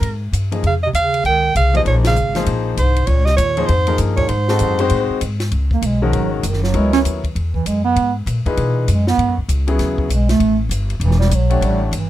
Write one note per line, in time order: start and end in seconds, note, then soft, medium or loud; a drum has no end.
0.00 0.21 F2 medium
0.00 0.32 G#2 medium
0.00 0.22 A#4 medium
0.00 ride medium
0.32 0.62 G2 medium
0.32 hi-hat pedal medium
0.32 ride medium
0.52 0.62 F3 soft
0.52 0.62 A#3 medium
0.52 0.63 D#4 soft
0.52 0.63 G#4 medium
0.52 0.63 D#5 medium
0.52 ride medium
0.63 0.93 F2 medium
0.63 0.75 C#3 medium
0.63 0.75 F5 medium
0.63 ride medium
0.83 0.91 C3 medium
0.83 0.88 D#5 medium
0.93 1.23 D#2 medium
0.93 1.23 F5 loud
0.93 hi-hat pedal medium
0.93 ride medium
0.98 1.25 C#3 medium
1.14 ride soft
1.24 1.54 C#2 medium
1.24 1.54 D#3 medium
1.24 1.54 G5 loud
1.24 ride medium
1.55 1.85 C2 medium
1.55 1.73 C#3 medium
1.55 1.74 F5 loud
1.55 hi-hat pedal medium
1.55 ride medium
1.74 1.81 C3 medium
1.74 2.14 F3 medium
1.74 2.14 A#3 medium
1.74 2.14 D#4 medium
1.74 2.14 G#4 medium
1.74 2.14 C5 medium
1.74 1.81 D#5 medium
1.74 ride soft
1.85 2.15 A#1 loud
1.85 1.95 A#2 medium
1.85 1.96 C#5 medium
1.85 ride medium
2.04 2.44 C#3 medium
2.04 2.45 F5 medium
2.04 snare medium
2.04 ride medium
2.16 2.46 G#1 medium
2.16 hi-hat pedal medium
2.35 2.75 F3 medium
2.35 2.75 A#3 medium
2.35 2.76 D#4 medium
2.35 2.76 G#4 medium
2.35 2.75 C5 medium
2.35 snare soft
2.35 ride soft
2.46 2.76 A#1 medium
2.46 ride medium
2.76 3.07 C2 medium
2.76 3.07 G#2 medium
2.76 3.08 C5 medium
2.76 hi-hat pedal medium
2.76 ride medium
2.96 ride medium
3.06 3.37 C#2 medium
3.06 3.27 A#2 medium
3.06 3.26 C#5 medium
3.06 ride medium
3.25 3.35 C3 medium
3.25 3.36 D#5 loud
3.25 snare soft
3.35 3.68 D#2 loud
3.35 3.68 A#2 medium
3.35 3.68 C#5 loud
3.35 hi-hat pedal medium
3.35 ride medium
3.57 3.68 F3 medium
3.57 3.68 A#3 medium
3.57 3.68 D#4 medium
3.57 3.68 G#4 medium
3.57 3.68 C5 medium
3.57 ride soft
3.66 3.98 F2 medium
3.66 3.98 G#2 medium
3.66 3.98 C5 loud
3.66 ride medium
3.87 4.27 F3 medium
3.87 4.27 A#3 medium
3.87 4.27 D#4 medium
3.87 4.28 G#4 medium
3.87 4.28 A#4 medium
3.87 ride soft
3.98 4.28 G2 medium
3.98 hi-hat pedal medium
3.98 ride medium
4.16 4.29 A#2 medium
4.16 4.30 C#5 medium
4.16 kick medium
4.16 ride medium
4.27 5.20 G#2 medium
4.27 4.59 G#2 medium
4.27 5.21 C5 medium
4.27 ride medium
4.48 4.77 G#3 medium
4.48 4.78 C4 medium
4.48 4.78 D#4 medium
4.48 4.78 F#4 medium
4.48 4.78 A4 medium
4.48 snare medium
4.59 4.90 F#2 medium
4.59 hi-hat pedal medium
4.59 ride medium
4.79 5.19 G#3 medium
4.79 5.19 C4 medium
4.79 5.19 D#4 medium
4.79 5.19 F#4 medium
4.79 5.20 C5 loud
4.79 ride soft
4.89 5.08 A2 medium
4.89 ride medium
5.10 muted upright bass stroke soft
5.21 5.51 G#2 medium
5.21 hi-hat pedal medium
5.21 ride medium
5.40 snare medium
5.40 ride medium
5.51 5.81 C#2 medium
5.51 ride medium
5.71 5.88 A#3 medium
5.71 kick medium
5.82 6.12 B1 medium
5.82 hi-hat pedal medium
5.82 ride medium
5.86 6.05 G#3 medium
6.02 6.41 D#3 medium
6.02 6.17 F3 medium
6.02 6.41 G#3 medium
6.02 6.41 C#4 medium
6.02 6.42 F#4 medium
6.02 6.42 A#4 medium
6.12 6.42 G#1 medium
6.12 6.33 F#3 medium
6.12 ride medium
6.33 6.48 B2 soft
6.43 6.73 F#1 medium
6.43 6.62 D#3 medium
6.43 hi-hat pedal medium
6.43 ride medium
6.53 snare soft
6.62 6.77 F#3 medium
6.62 snare soft
6.74 7.03 C#2 loud
6.74 7.20 F#3 medium
6.74 6.93 G#3 medium
6.74 7.20 B3 medium
6.74 7.20 E4 medium
6.74 7.20 A#4 medium
6.74 7.20 C#5 medium
6.74 ride medium
6.93 7.00 C#4 loud
6.93 snare soft
6.93 ride medium
7.04 7.34 D#2 medium
7.04 hi-hat pedal medium
7.04 ride medium
7.24 kick soft
7.24 ride soft
7.35 7.65 E2 medium
7.35 ride medium
7.54 7.69 E3 medium
7.54 kick soft
7.66 7.95 F#2 medium
7.66 7.84 G#3 medium
7.66 hi-hat pedal medium
7.66 ride medium
7.84 8.13 B3 loud
7.96 8.25 G#2 medium
7.96 ride medium
8.26 8.44 A#2 medium
8.26 hi-hat pedal medium
8.26 ride medium
8.46 8.85 A#2 medium
8.46 8.85 E3 medium
8.46 8.85 D#4 medium
8.46 8.86 G#4 medium
8.46 8.86 B4 medium
8.46 muted upright bass stroke soft
8.46 kick soft
8.46 ride soft
8.57 8.87 B2 loud
8.57 ride medium
8.78 8.92 E3 soft
8.88 9.17 F#2 medium
8.88 9.07 G#3 medium
8.88 hi-hat pedal medium
8.88 ride medium
9.07 9.36 B3 loud
9.07 snare medium
9.18 9.28 G#2 medium
9.18 ride medium
9.28 9.37 F#2 medium
9.38 9.48 C#2 medium
9.48 9.78 C#2 medium
9.48 hi-hat pedal medium
9.48 ride medium
9.67 10.07 C#3 medium
9.67 10.07 F#3 medium
9.67 10.07 B3 medium
9.67 10.07 E4 medium
9.67 10.07 G#4 medium
9.67 ride soft
9.79 10.09 D#2 medium
9.79 snare soft
9.79 ride medium
9.98 10.15 E3 soft
9.98 kick medium
10.09 10.39 B1 medium
10.09 hi-hat pedal medium
10.09 ride medium
10.13 10.29 G#3 medium
10.29 10.58 A3 medium
10.29 snare medium
10.29 ride medium
10.39 10.69 A1 medium
10.39 ride medium
10.69 10.99 G1 medium
10.69 hi-hat pedal medium
10.69 ride medium
10.90 ride soft
11.00 11.30 E1 medium
11.00 11.19 E3 medium
11.00 ride medium
11.11 snare soft
11.19 11.36 G3 medium
11.19 snare soft
11.30 11.60 B1 medium
11.30 hi-hat pedal medium
11.30 ride medium
11.34 11.66 F#3 medium
11.50 11.90 A3 medium
11.50 11.90 D4 medium
11.50 11.90 G4 medium
11.50 11.90 C#5 medium
11.50 11.90 F#5 medium
11.50 ride soft
11.61 11.91 A1 medium
11.61 11.82 G3 medium
11.61 ride medium
11.91 12.10 G1 medium
11.91 hi-hat pedal medium
11.91 ride medium
11.96 12.10 E3 medium